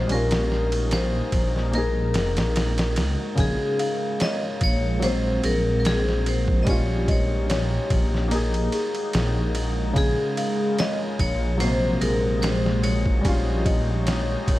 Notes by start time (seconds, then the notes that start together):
Already playing: C3 F#3 A#3 D#4 A#4 C5
0.07 A#1 G3 C#4 A#4, ride
0.12 F4 A#4
0.31 snare, ride
0.52 snare
0.72 ride
0.91 C5, snare, ride
1.32 A#1, kick, ride
1.56 snare
1.71 G#3 A#3 D#4 F#4 A#4, ride
1.78 G#4
2.14 F1, snare, ride
2.37 A#1, snare, ride
2.56 snare, ride
2.78 snare, ride
2.96 C#2, snare, ride
3.35 A#1 C#3 G#3 F4, kick, ride
3.39 G#3 G#4 A#4
3.79 F5, ride
4.20 C#5 D#5, snare, ride
4.61 A#1 C#5, kick, ride
5.00 F#3 A#3 D#4 C5, ride
5.04 C4 F#4 C5
5.43 A#1 G#4 A#4, ride
5.80 A#4
5.85 G#4, snare, ride
6.09 snare
6.26 C5, ride
6.48 kick
6.63 G3 D#5, ride
6.67 A#1 A#3 C#4 D#4 G4 C#5, kick
6.71 F4
7.08 C#5 D#5, kick, ride
7.50 C#5, snare, ride
7.90 A#1, kick, ride
8.14 snare
8.28 G#3 A#3 D#4 F#4 A#4, ride
8.32 G#4 A#4
8.54 ride
8.72 G#4, ride
8.95 ride
9.13 A#1, snare, ride
9.55 ride
9.93 A#1 C#3 G#3, kick, ride
9.97 F4 G#4 A#4
10.37 F5, ride
10.78 C#5 D#5, snare, ride
11.19 A#1 C#5, kick, ride
11.58 F#3 G#3 A#3 D#4 F#4 C5 D#5, ride
11.64 C3
12.01 A#1 G#4 A#4, ride
12.42 C5, snare, ride
12.66 snare
12.83 C#5, ride
13.06 kick
13.21 A#1 G3 A#3 C#4 G4 C#5, kick, ride
13.28 F4
13.66 D#5, kick, ride
14.07 C#5, snare, ride
14.48 A#1, kick, ride